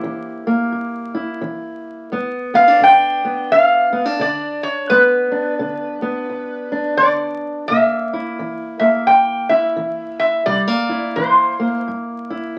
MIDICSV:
0, 0, Header, 1, 3, 480
1, 0, Start_track
1, 0, Tempo, 695249
1, 1463, Time_signature, 4, 2, 24, 8
1, 8690, End_track
2, 0, Start_track
2, 0, Title_t, "Resonator guitar played with a steel bar"
2, 0, Program_c, 0, 25
2, 0, Note_on_c, 0, 72, 79
2, 1242, Note_off_c, 0, 72, 0
2, 1761, Note_on_c, 0, 77, 98
2, 1952, Note_off_c, 0, 77, 0
2, 1957, Note_on_c, 0, 79, 108
2, 2426, Note_off_c, 0, 79, 0
2, 2429, Note_on_c, 0, 77, 104
2, 2879, Note_off_c, 0, 77, 0
2, 2908, Note_on_c, 0, 74, 91
2, 3195, Note_off_c, 0, 74, 0
2, 3198, Note_on_c, 0, 73, 92
2, 3381, Note_on_c, 0, 71, 91
2, 3392, Note_off_c, 0, 73, 0
2, 4815, Note_on_c, 0, 74, 88
2, 4867, Note_off_c, 0, 71, 0
2, 5273, Note_off_c, 0, 74, 0
2, 5301, Note_on_c, 0, 76, 87
2, 6048, Note_off_c, 0, 76, 0
2, 6072, Note_on_c, 0, 76, 78
2, 6261, Note_on_c, 0, 79, 89
2, 6269, Note_off_c, 0, 76, 0
2, 6534, Note_off_c, 0, 79, 0
2, 6555, Note_on_c, 0, 76, 86
2, 7009, Note_off_c, 0, 76, 0
2, 7039, Note_on_c, 0, 76, 90
2, 7214, Note_off_c, 0, 76, 0
2, 7220, Note_on_c, 0, 74, 93
2, 7701, Note_off_c, 0, 74, 0
2, 7704, Note_on_c, 0, 72, 70
2, 8157, Note_off_c, 0, 72, 0
2, 8690, End_track
3, 0, Start_track
3, 0, Title_t, "Steel-string acoustic guitar"
3, 0, Program_c, 1, 25
3, 0, Note_on_c, 1, 58, 56
3, 0, Note_on_c, 1, 64, 58
3, 0, Note_on_c, 1, 67, 63
3, 24, Note_on_c, 1, 52, 64
3, 315, Note_off_c, 1, 58, 0
3, 323, Note_on_c, 1, 58, 58
3, 466, Note_off_c, 1, 52, 0
3, 499, Note_on_c, 1, 43, 63
3, 783, Note_off_c, 1, 64, 0
3, 791, Note_on_c, 1, 64, 62
3, 943, Note_off_c, 1, 43, 0
3, 976, Note_on_c, 1, 52, 65
3, 1422, Note_off_c, 1, 52, 0
3, 1439, Note_off_c, 1, 64, 0
3, 1445, Note_off_c, 1, 58, 0
3, 1462, Note_on_c, 1, 43, 70
3, 1466, Note_on_c, 1, 59, 63
3, 1753, Note_off_c, 1, 59, 0
3, 1753, Note_on_c, 1, 59, 60
3, 1849, Note_off_c, 1, 59, 0
3, 1849, Note_on_c, 1, 62, 48
3, 1905, Note_off_c, 1, 43, 0
3, 1937, Note_on_c, 1, 50, 62
3, 1984, Note_off_c, 1, 67, 0
3, 2242, Note_on_c, 1, 59, 60
3, 2383, Note_off_c, 1, 50, 0
3, 2427, Note_on_c, 1, 38, 60
3, 2701, Note_off_c, 1, 59, 0
3, 2707, Note_off_c, 1, 62, 0
3, 2710, Note_on_c, 1, 59, 60
3, 2800, Note_off_c, 1, 59, 0
3, 2800, Note_on_c, 1, 62, 48
3, 2868, Note_off_c, 1, 38, 0
3, 2896, Note_on_c, 1, 50, 67
3, 3343, Note_off_c, 1, 50, 0
3, 3380, Note_off_c, 1, 62, 0
3, 3383, Note_on_c, 1, 43, 71
3, 3390, Note_on_c, 1, 59, 61
3, 3670, Note_on_c, 1, 62, 58
3, 3826, Note_off_c, 1, 43, 0
3, 3862, Note_on_c, 1, 50, 68
3, 4148, Note_off_c, 1, 59, 0
3, 4156, Note_on_c, 1, 59, 59
3, 4306, Note_off_c, 1, 50, 0
3, 4346, Note_on_c, 1, 38, 60
3, 4630, Note_off_c, 1, 62, 0
3, 4638, Note_on_c, 1, 62, 57
3, 4788, Note_off_c, 1, 38, 0
3, 4827, Note_on_c, 1, 50, 61
3, 5269, Note_off_c, 1, 50, 0
3, 5284, Note_off_c, 1, 59, 0
3, 5284, Note_off_c, 1, 62, 0
3, 5316, Note_on_c, 1, 48, 76
3, 5321, Note_on_c, 1, 58, 58
3, 5616, Note_on_c, 1, 64, 61
3, 5754, Note_off_c, 1, 48, 0
3, 5794, Note_on_c, 1, 52, 66
3, 6076, Note_off_c, 1, 58, 0
3, 6079, Note_on_c, 1, 58, 58
3, 6233, Note_off_c, 1, 52, 0
3, 6266, Note_on_c, 1, 43, 61
3, 6553, Note_off_c, 1, 64, 0
3, 6561, Note_on_c, 1, 64, 63
3, 6708, Note_off_c, 1, 43, 0
3, 6741, Note_on_c, 1, 52, 68
3, 7186, Note_off_c, 1, 52, 0
3, 7204, Note_off_c, 1, 58, 0
3, 7205, Note_off_c, 1, 64, 0
3, 7221, Note_on_c, 1, 48, 75
3, 7221, Note_on_c, 1, 55, 66
3, 7369, Note_off_c, 1, 55, 0
3, 7369, Note_on_c, 1, 58, 49
3, 7521, Note_on_c, 1, 64, 55
3, 7666, Note_off_c, 1, 48, 0
3, 7710, Note_on_c, 1, 52, 71
3, 7996, Note_off_c, 1, 58, 0
3, 8006, Note_on_c, 1, 58, 58
3, 8150, Note_off_c, 1, 52, 0
3, 8200, Note_on_c, 1, 43, 60
3, 8479, Note_off_c, 1, 64, 0
3, 8494, Note_on_c, 1, 64, 59
3, 8635, Note_off_c, 1, 43, 0
3, 8690, Note_off_c, 1, 58, 0
3, 8690, Note_off_c, 1, 64, 0
3, 8690, End_track
0, 0, End_of_file